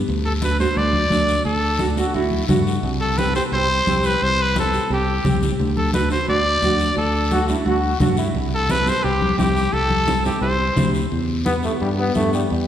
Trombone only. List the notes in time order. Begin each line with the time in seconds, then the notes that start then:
1.80 D4
1.98 F#4
2.15 E4
2.49 F#4
7.32 F#4
7.49 E4
7.67 F#4
8.01 F#4
8.18 E4
11.45 B3
11.64 A3
11.81 G3
11.98 B3
12.16 A3
12.34 G3
12.52 G3